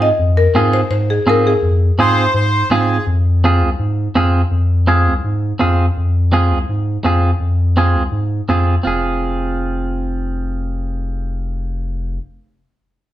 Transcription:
0.00 0.11 G#2 loud
0.00 0.18 D#5 medium
0.19 0.48 F2 loud
0.37 0.74 A#4 medium
0.54 0.83 G#2 loud
0.54 0.80 C4 medium
0.54 0.80 F4 medium
0.54 0.81 G#4 medium
0.73 0.89 C5 medium
0.90 1.19 G#2 medium
0.90 1.07 C5 medium
1.10 1.28 G#4 medium
1.26 1.55 G#2 loud
1.26 1.52 C4 medium
1.26 1.52 F4 medium
1.26 1.52 G#4 medium
1.26 1.37 A#4 medium
1.47 2.68 G#4 medium
1.62 1.91 F2 medium
1.98 2.27 G#2 loud
1.98 2.24 C4 medium
1.98 2.24 F4 medium
1.98 2.24 G#4 loud
1.98 2.34 C5 loud
2.34 2.63 G#2 loud
2.34 2.69 C5 loud
2.70 2.99 G#2 loud
2.70 2.96 C4 medium
2.70 2.97 F4 medium
2.70 3.05 G#4 medium
2.70 2.96 G#4 medium
3.07 3.62 F2 medium
3.44 3.69 C4 medium
3.44 3.69 F4 medium
3.44 3.69 G#4 medium
3.61 3.75 C2 medium
3.79 4.08 G#2 medium
4.15 4.44 F2 medium
4.15 4.41 C4 medium
4.15 4.41 F4 medium
4.15 4.41 G#4 medium
4.51 5.08 F2 loud
4.87 5.13 C4 medium
4.87 5.13 F4 medium
4.87 5.13 G#4 loud
5.06 5.20 C2 medium
5.24 5.53 G#2 loud
5.59 5.89 F2 medium
5.59 5.85 C4 medium
5.59 5.85 F4 medium
5.59 5.85 G#4 medium
5.97 6.52 F2 medium
6.33 6.58 C4 medium
6.33 6.58 F4 medium
6.33 6.58 G#4 loud
6.51 6.65 C2 medium
6.69 6.98 G#2 loud
7.04 7.33 F2 medium
7.04 7.30 C4 medium
7.04 7.30 F4 medium
7.04 7.30 G#4 medium
7.40 7.95 F2 medium
7.77 8.02 C4 medium
7.77 8.02 F4 medium
7.77 8.03 G#4 medium
7.94 8.09 C2 medium
8.12 8.41 G#2 medium
8.48 8.78 F2 medium
8.48 8.74 C4 medium
8.48 8.74 F4 medium
8.48 8.75 G#4 medium
8.83 12.18 F1 medium
8.83 12.17 C4 medium
8.83 12.18 F4 medium
8.83 12.20 G#4 medium

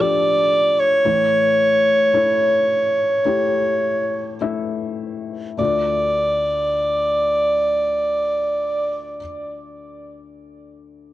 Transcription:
0.00 1.02 D2 medium
0.00 1.02 A2 medium
0.00 1.07 F3 medium
0.00 1.07 D4 medium
0.00 1.01 G4 medium
0.00 1.08 A4 medium
0.00 0.81 D5 medium
0.80 4.41 C#5 medium
1.05 5.56 A2 medium
1.05 5.56 E3 medium
1.05 2.08 A3 medium
1.05 2.08 E4 medium
1.05 2.09 C#5 medium
2.13 3.20 A3 medium
2.13 3.20 E4 medium
2.13 3.20 C#5 medium
3.25 4.35 A3 medium
3.25 4.35 E4 medium
3.25 4.35 G4 medium
4.41 5.54 A3 medium
4.41 5.54 E4 medium
4.41 5.54 E5 medium
5.58 9.18 D2 medium
5.58 9.16 A3 medium
5.58 9.18 F4 soft
5.58 9.17 D5 medium
5.62 9.21 D5 medium

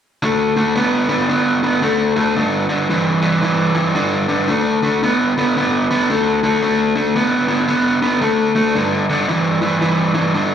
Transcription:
0.23 0.53 D3 medium
0.23 0.54 A3 medium
0.56 0.74 D3 medium
0.56 0.75 A3 medium
0.75 1.06 D3 medium
0.75 1.06 B3 medium
1.09 1.27 D3 medium
1.09 1.27 B3 medium
1.29 1.60 D3 medium
1.29 1.60 B3 medium
1.63 1.80 D3 medium
1.63 1.81 B3 medium
1.82 2.12 D3 medium
1.82 2.13 A3 medium
2.16 2.34 D3 medium
2.16 2.34 A3 medium
2.35 2.66 G2 medium
2.35 2.66 D3 medium
2.69 2.87 G2 medium
2.69 2.87 D3 medium
2.89 3.19 G2 medium
2.89 3.20 E3 medium
3.22 3.40 G2 medium
3.22 3.40 E3 medium
3.42 3.72 G2 medium
3.42 3.73 E3 medium
3.74 3.93 G2 medium
3.74 3.93 E3 medium
3.95 4.26 G2 medium
3.95 4.26 D3 medium
4.28 4.46 G2 medium
4.28 4.47 D3 medium
4.48 4.79 D3 medium
4.48 4.79 A3 loud
4.82 5.00 D3 medium
4.82 5.01 A3 medium
5.03 5.33 D3 medium
5.03 5.33 B3 medium
5.38 5.54 D3 medium
5.38 5.54 B3 medium
5.56 5.86 D3 medium
5.56 5.87 B3 medium
5.91 6.07 D3 medium
5.91 6.08 B3 medium
6.10 6.39 D3 medium
6.10 6.40 A3 medium
6.43 6.60 D3 medium
6.43 6.61 A3 medium
6.62 6.92 D3 medium
6.62 6.92 A3 medium
6.95 7.13 D3 medium
6.95 7.13 A3 medium
7.15 7.45 D3 medium
7.15 7.46 B3 medium
7.48 7.66 D3 medium
7.48 7.66 B3 medium
7.68 7.98 D3 medium
7.68 7.98 B3 medium
8.02 8.20 D3 medium
8.02 8.20 B3 medium
8.21 8.52 D3 medium
8.21 8.52 A3 medium
8.55 8.73 D3 medium
8.55 8.73 A3 medium
8.75 9.05 G2 medium
8.75 9.05 D3 medium
9.10 9.27 G2 medium
9.10 9.27 D3 medium
9.28 9.59 G2 medium
9.28 9.59 E3 medium
9.61 9.79 G2 medium
9.61 9.80 E3 medium
9.81 10.12 G2 medium
9.81 10.12 E3 medium
10.14 10.33 G2 medium
10.14 10.32 E3 medium
10.34 10.55 G2 medium
10.34 10.55 D3 medium

